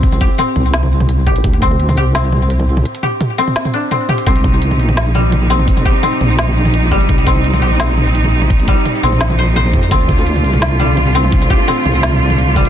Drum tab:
HH |xoo-x-x-x---x--o|xo--x-x-xo--x---|xoo-x-x-xox-x-xo|xo--x-x-xo--x---|
SD |--------o-------|--------o-------|--------o-------|--------o-------|
T2 |-o--o-o--o-o--o-|o--o-o--o-o--o-o|--o-o--o-o--o-o-|o-o--o-o--o-o--o|
BD |o-o-----------o-|o-o-------------|----------------|o-o-------------|

HH |xoo-x-x-x---x--o|xo--x-x-xo--x---|xoo-x-x-x---x--o|xo--x-x-xo--x---|
SD |--------o-------|--------o-------|--------o-------|--------o-------|
T2 |-o--o-o--o-o--o-|o--o-o--o-o--o-o|--o-o--o-o--o-o-|o-o--o-o--o-o--o|
BD |o-o-----------o-|o-o-------------|o-o-----------o-|o-o-------------|

HH |xoo-x-x-x---x--o|
SD |--------o-------|
T2 |-o--o-o--o-o--o-|
BD |o-o-----------o-|